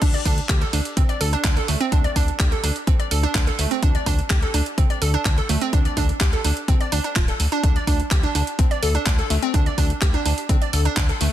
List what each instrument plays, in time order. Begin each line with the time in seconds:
0.02 analog synth bass D2, synth arpeggio sound D4, kick, closed hi-hat, crash
0.14 synth arpeggio sound D5, closed hi-hat
0.25 analog synth bass D2, synth arpeggio sound D4, kick, open hi-hat
0.38 closed hi-hat
0.49 analog synth bass D2, synth arpeggio sound G4, kick, clap, closed hi-hat
0.61 synth arpeggio sound A4, closed hi-hat
0.73 analog synth bass D2, synth arpeggio sound D4, open hi-hat
0.85 closed hi-hat
0.97 analog synth bass D2, synth arpeggio sound C4, kick, closed hi-hat
1.09 synth arpeggio sound D5, closed hi-hat
1.21 analog synth bass D2, synth arpeggio sound A4, open hi-hat
1.33 synth arpeggio sound D4, closed hi-hat
1.44 analog synth bass D2, synth arpeggio sound D4, kick, clap, closed hi-hat
1.57 synth arpeggio sound A4, closed hi-hat
1.68 analog synth bass D2, synth arpeggio sound A3, open hi-hat
1.81 synth arpeggio sound C4, closed hi-hat
1.92 analog synth bass D2, synth arpeggio sound D4, kick, closed hi-hat
2.04 synth arpeggio sound D5, closed hi-hat
2.16 analog synth bass D2, synth arpeggio sound D4, kick, open hi-hat
2.28 closed hi-hat
2.39 analog synth bass D2, synth arpeggio sound G4, kick, clap, closed hi-hat
2.52 synth arpeggio sound A4, closed hi-hat
2.63 analog synth bass D2, synth arpeggio sound D4, open hi-hat
2.76 closed hi-hat
2.87 analog synth bass D2, synth arpeggio sound C4, kick, closed hi-hat
3.00 synth arpeggio sound D5, closed hi-hat
3.11 analog synth bass D2, synth arpeggio sound A4, open hi-hat
3.23 synth arpeggio sound D4, closed hi-hat
3.35 analog synth bass D2, synth arpeggio sound D4, kick, clap, closed hi-hat
3.47 synth arpeggio sound A4, closed hi-hat
3.59 analog synth bass D2, synth arpeggio sound A3, open hi-hat
3.71 synth arpeggio sound C4, closed hi-hat
3.83 analog synth bass D2, synth arpeggio sound D4, kick, closed hi-hat
3.95 synth arpeggio sound D5, closed hi-hat
4.06 analog synth bass D2, synth arpeggio sound D4, kick, open hi-hat
4.19 closed hi-hat
4.30 analog synth bass D2, synth arpeggio sound G4, kick, clap, closed hi-hat
4.42 synth arpeggio sound A4, closed hi-hat
4.54 analog synth bass D2, synth arpeggio sound D4, open hi-hat
4.66 closed hi-hat
4.78 analog synth bass D2, synth arpeggio sound C4, kick, closed hi-hat
4.90 synth arpeggio sound D5, closed hi-hat
5.02 analog synth bass D2, synth arpeggio sound A4, open hi-hat
5.14 synth arpeggio sound D4, closed hi-hat
5.25 analog synth bass D2, synth arpeggio sound D4, kick, clap, closed hi-hat
5.38 synth arpeggio sound A4, closed hi-hat
5.49 analog synth bass D2, synth arpeggio sound A3, open hi-hat
5.61 synth arpeggio sound C4, closed hi-hat
5.73 analog synth bass D2, synth arpeggio sound D4, kick, closed hi-hat
5.85 synth arpeggio sound D5, closed hi-hat
5.97 analog synth bass D2, synth arpeggio sound D4, kick, open hi-hat
6.09 closed hi-hat
6.20 analog synth bass D2, synth arpeggio sound G4, kick, clap, closed hi-hat
6.33 synth arpeggio sound A4, closed hi-hat
6.45 analog synth bass D2, synth arpeggio sound D4, open hi-hat
6.57 closed hi-hat
6.68 analog synth bass D2, synth arpeggio sound C4, kick, closed hi-hat
6.81 synth arpeggio sound D5, closed hi-hat
6.92 analog synth bass D2, synth arpeggio sound D4, open hi-hat
7.04 synth arpeggio sound D4, closed hi-hat
7.16 analog synth bass D1, synth arpeggio sound F4, kick, clap, closed hi-hat
7.28 synth arpeggio sound A4, closed hi-hat
7.40 analog synth bass D2, open hi-hat
7.52 synth arpeggio sound D4, closed hi-hat
7.63 analog synth bass D2, synth arpeggio sound D4, kick, closed hi-hat
7.76 synth arpeggio sound D5, closed hi-hat
7.87 analog synth bass D2, synth arpeggio sound D4, kick, open hi-hat
8.00 closed hi-hat
8.11 analog synth bass D2, synth arpeggio sound G4, kick, clap, closed hi-hat
8.23 synth arpeggio sound D4, closed hi-hat
8.35 analog synth bass D2, synth arpeggio sound D4, open hi-hat
8.47 closed hi-hat
8.59 analog synth bass D2, synth arpeggio sound C4, kick, closed hi-hat
8.71 synth arpeggio sound D5, closed hi-hat
8.83 analog synth bass D2, synth arpeggio sound A4, open hi-hat
8.95 synth arpeggio sound D4, closed hi-hat
9.06 analog synth bass D2, synth arpeggio sound D4, kick, clap, closed hi-hat
9.19 synth arpeggio sound A4, closed hi-hat
9.30 analog synth bass D2, synth arpeggio sound A3, open hi-hat
9.42 synth arpeggio sound C4, closed hi-hat
9.54 analog synth bass D2, synth arpeggio sound D4, kick, closed hi-hat
9.66 synth arpeggio sound D5, closed hi-hat
9.78 analog synth bass D2, synth arpeggio sound D4, kick, open hi-hat
9.90 closed hi-hat
10.01 analog synth bass D2, synth arpeggio sound G4, kick, clap, closed hi-hat
10.14 synth arpeggio sound D4, closed hi-hat
10.26 analog synth bass D2, synth arpeggio sound D4, open hi-hat
10.38 closed hi-hat
10.49 analog synth bass D2, synth arpeggio sound C4, kick, closed hi-hat
10.62 synth arpeggio sound D5, closed hi-hat
10.73 analog synth bass D2, synth arpeggio sound A4, open hi-hat
10.85 synth arpeggio sound D4, closed hi-hat
10.97 analog synth bass D2, synth arpeggio sound D4, kick, clap, closed hi-hat
11.09 synth arpeggio sound A4, closed hi-hat
11.21 analog synth bass D2, synth arpeggio sound A3, open hi-hat